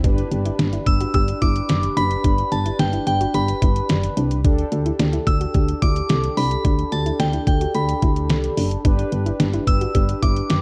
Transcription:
0.04 G1 D4 G4 B4, kick, closed hi-hat
0.18 closed hi-hat
0.32 G1, closed hi-hat
0.45 E4, closed hi-hat
0.59 G1 D4, snare, closed hi-hat
0.73 E4, closed hi-hat
0.86 G1 E6, kick, closed hi-hat
1.01 F#4, closed hi-hat
1.14 G1 G4 E6, kick, closed hi-hat
1.28 closed hi-hat
1.42 G1 E4 D6, kick, closed hi-hat
1.56 closed hi-hat
1.69 F#1, snare, closed hi-hat
1.83 closed hi-hat
1.97 F#1 D4 B5, closed hi-hat
2.11 closed hi-hat
2.24 G1 D4, kick, closed hi-hat
2.38 closed hi-hat
2.52 G1 A5, closed hi-hat
2.66 E4, closed hi-hat
2.79 G1 D4 G5, snare, closed hi-hat
2.93 E4, closed hi-hat
3.07 G1 G5, closed hi-hat
3.21 F#4, closed hi-hat
3.34 G1 G4 B5, closed hi-hat
3.48 closed hi-hat
3.62 G1 E4, kick, closed hi-hat
3.76 closed hi-hat
3.89 F#1, snare, closed hi-hat
4.03 closed hi-hat
4.17 C2 D4, closed hi-hat
4.31 closed hi-hat
4.44 D2 D4 G4 A4, kick, closed hi-hat
4.58 closed hi-hat
4.72 D2, closed hi-hat
4.86 E4, closed hi-hat
4.99 D2 D4, snare, closed hi-hat
5.13 E4, closed hi-hat
5.27 D2 E6, kick, closed hi-hat
5.41 F#4, closed hi-hat
5.54 D2 G4, kick, closed hi-hat
5.68 closed hi-hat
5.82 D2 E4 D6, kick, closed hi-hat
5.96 closed hi-hat
6.09 C2, snare, closed hi-hat
6.24 closed hi-hat
6.37 C2 D4 B5, open hi-hat
6.51 closed hi-hat
6.65 D2 D4, kick, closed hi-hat
6.79 closed hi-hat
6.92 D2 A5, closed hi-hat
7.06 E4, closed hi-hat
7.20 D2 D4 G5, snare, closed hi-hat
7.33 E4, closed hi-hat
7.47 D2 G5, kick, closed hi-hat
7.61 F#4, closed hi-hat
7.75 D2 G4 B5, closed hi-hat
7.89 closed hi-hat
8.02 D2 E4, kick, closed hi-hat
8.16 closed hi-hat
8.30 C2, snare, closed hi-hat
8.44 closed hi-hat
8.57 F#1 D4, open hi-hat
8.71 closed hi-hat
8.85 G1 D4 G4 B4, kick, closed hi-hat
8.99 closed hi-hat
9.12 G1, closed hi-hat
9.26 E4, closed hi-hat
9.40 G1 D4, snare, closed hi-hat
9.53 E4, closed hi-hat
9.67 G1 E6, kick, closed hi-hat
9.81 F#4, closed hi-hat
9.95 G1 G4, kick, closed hi-hat
10.09 closed hi-hat
10.22 G1 E4 D6, kick, closed hi-hat
10.36 closed hi-hat
10.50 F#1, snare, closed hi-hat

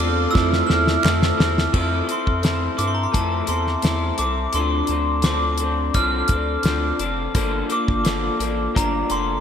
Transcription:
Already playing: A3 C4 D4 F4 A4 D5 C6 D6
0.00 E2 C4 F4 A4, ride
0.31 F3 A3 C4 F4 E6
0.35 F2 C4 E4 A4, kick, snare
0.53 snare
0.67 E2 E4 A4 F6, snare
0.71 C4
0.87 snare
1.03 F2 A3 C4 E4 A4, snare, clap
1.22 snare
1.37 E2 C4 E4 A4, snare
1.58 snare
1.72 F2 F3 A3 C4 E4 A4, kick, crash
2.07 C4 E4 A4, closed hi-hat
2.12 C6
2.27 F2, kick
2.42 A3 C4 E4 A4, snare, closed hi-hat
2.77 G2 C4 E4 A4 D6, closed hi-hat
2.88 C6
2.95 A#5
3.03 C6
3.12 F2 F3 A3 C4 E4 A4 A5, kick, closed hi-hat
3.46 E2 C4 E4 A4 C6, closed hi-hat
3.67 snare
3.82 E2 A3 C4 E4 A4, snare, closed hi-hat
4.18 C2 C4 E4 A4 D6, closed hi-hat
4.53 D2 D3 F3 C4 D4 A4 C6, closed hi-hat
4.87 D2 D4 A4, closed hi-hat
4.91 C4
5.22 F3 C4 D6, snare, closed hi-hat
5.26 D4 A4
5.58 A4, closed hi-hat
5.62 C4 D4
5.94 C2 D3 F3 C4 D4 A4 F6, kick, closed hi-hat
6.28 D2 D4 A4, kick, closed hi-hat
6.33 C4
6.63 D2 F3 C4 D4, snare, closed hi-hat
6.68 A4
6.99 F1 C4 D4 A4, closed hi-hat
7.34 G1 G2 D3 F3 A#3 D4 A4, kick, closed hi-hat
7.69 F3 A#3 D4 A4 D6, closed hi-hat
7.88 G1, kick
8.04 F3 A#3 D4 A4, snare, closed hi-hat
8.39 A1 F3 A#3 D4 A4, closed hi-hat
8.74 G1 G2 D3 F3 A#3 D4 A#5, kick, closed hi-hat
9.10 F1 F3 A#3 D4 A4 C6, closed hi-hat

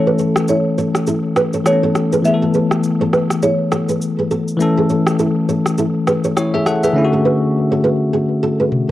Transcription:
Already playing: E3 A3 C#4 A4 C#5
0.07 G#4 B4
0.18 A4 C#5, shaker
0.36 cross-stick, shaker
0.48 E4 A4 C#5, shaker
0.78 A4 C#5, shaker
0.95 cross-stick, shaker
1.07 E4 A4, shaker
1.36 G#4 B4, cross-stick, shaker
1.53 A4 C#5, shaker
1.64 E3 A3 B3 A4 C#5, cross-stick, shaker
1.73 C#4
1.83 A4 C#5
1.95 cross-stick, shaker
2.12 G#4 B4, shaker
2.22 E3 A3 B3 E5, shaker
2.27 G#4
2.34 A4
2.42 F#4 A4
2.54 G#4 B4, shaker
2.71 cross-stick, shaker
2.83 shaker
3.01 A4 C#5
3.13 G#4 B4, cross-stick, shaker
3.30 cross-stick, shaker
3.43 E4 G#4 C#5, shaker
3.72 F#4 A4, cross-stick, shaker
3.89 G#4 B4, shaker
4.02 shaker
4.19 G#4 B4
4.31 F#4 A4, shaker
4.48 shaker
4.57 E3 A3 C#4, shaker
4.62 A4
4.78 G#4 B4
4.89 A4 C#5, shaker
5.07 cross-stick, shaker
5.19 E4 A4, shaker
5.49 A4 C#5, shaker
5.66 cross-stick, shaker
5.78 E4 A4, shaker
6.07 G#4 B4, cross-stick, shaker
6.24 A4 C#5, shaker
6.37 E4 C#5, cross-stick, shaker
6.54 G#4 A4 C#5 E5
6.66 A4 F#5, cross-stick, shaker
6.83 G#4 B4 E5, shaker
6.93 D3 A3 C#4
6.98 E4
7.05 F#4
7.13 F#4 A4
7.25 G#4 B4
7.72 A4 C#5
7.84 G#4 B4
8.13 D4 G#4
8.43 F#4 A4
8.60 G#4 B4
8.72 high tom

